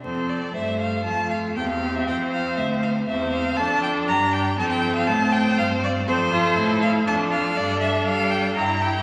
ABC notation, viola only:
X:1
M:3/4
L:1/8
Q:1/4=120
K:F
V:1 name="Viola"
C2 A,2 A,2 | C6 | C2 D4 | C6 |
C F E2 D2 | D4 E2 |]